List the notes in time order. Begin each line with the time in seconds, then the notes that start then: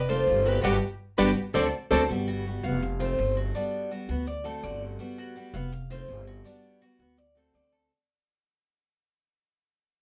Already playing: F1
0.08 D#3 A3 C4 F4 A4 C5
0.27 G1 D#3 A3 C4 F4
0.45 F#4 G4 B4
0.63 G1 G3 B3 D4 F#4 G4 B4 D5
1.18 G1 G3 B3 D4 F#4 G4 B4 D5
1.54 D2 A3 C4 D4 F#4 A4 C5 D5
1.91 D2 A3 C4 D4 F#4 A4 C5 D5
2.09 G1 G3 B3 F#4
2.28 F#4
2.45 G3 B3 F#4
2.63 F1 B3 F#4 F5
2.82 muted steel-string acoustic guitar stroke
2.99 D#3 A3 C4 F4 C5
3.18 G1 D#3 A3 C4 F4
3.37 F#4
3.55 G3 B3 D4 F#4
3.91 G3 B3 F#4
4.09 D2 B3 F#4
4.26 D5, muted steel-string acoustic guitar stroke
4.44 A3 C4 F#4 A4
4.62 G1 D3 A3 C4 F#4 D5
4.99 G3 B3 F#4
5.18 F#4
5.36 G3 B3 F#4
5.54 F1 B3 F#4 F5
5.72 muted steel-string acoustic guitar stroke
5.90 D#3 A3 C4 F4 C5
6.08 G1 D#3 A3 C4 F4
6.27 F#4
6.44 G3 B3 D4 F#4
6.81 G3 B3 F#4
6.99 D2 B3 F#4
7.17 D5, muted steel-string acoustic guitar stroke
7.35 A3 C4 F#4 A4
7.53 D2 D3 A3 C4 F#4 D5
7.73 A4